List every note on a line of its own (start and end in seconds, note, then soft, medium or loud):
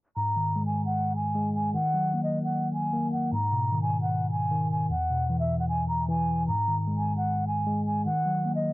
0.16 1.15 G#2 medium
0.16 0.63 A#5 loud
0.36 1.35 D#3 medium
0.56 1.34 G#3 medium
0.66 0.84 G#5 medium
0.85 1.13 F#5 medium
1.16 1.53 G#5 medium
1.35 1.75 G#3 medium
1.55 1.73 G#5 medium
1.74 2.73 D#3 medium
1.74 2.21 F#5 loud
1.94 2.93 F#3 medium
2.14 2.92 A#3 medium
2.24 2.42 D#5 medium
2.44 2.72 F#5 medium
2.73 3.10 G#5 medium
2.93 3.32 A#3 medium
3.12 3.31 F#5 medium
3.32 4.31 G#2 medium
3.32 3.79 A#5 loud
3.52 4.51 B2 medium
3.72 4.50 D#3 medium
3.82 4.00 G#5 medium
4.02 4.29 F#5 medium
4.31 4.68 G#5 medium
4.51 4.90 D#3 medium
4.71 4.89 G#5 medium
4.90 5.89 E2 medium
4.90 5.37 F#5 loud
5.11 6.09 B2 medium
5.30 6.07 E3 medium
5.40 5.58 E5 medium
5.59 5.68 F#5 medium
5.69 5.87 G#5 medium
5.88 6.07 A#5 medium
6.09 6.48 E3 medium
6.09 6.46 G#5 medium
6.48 7.47 G#2 medium
6.48 6.75 A#5 loud
6.68 7.67 D#3 medium
6.87 7.65 G#3 medium
6.98 7.16 G#5 medium
7.17 7.45 F#5 medium
7.47 7.84 G#5 medium
7.67 8.06 G#3 medium
7.86 8.05 G#5 medium
8.05 8.73 D#3 medium
8.05 8.52 F#5 loud
8.26 8.73 F#3 medium
8.45 8.73 A#3 medium
8.55 8.73 D#5 medium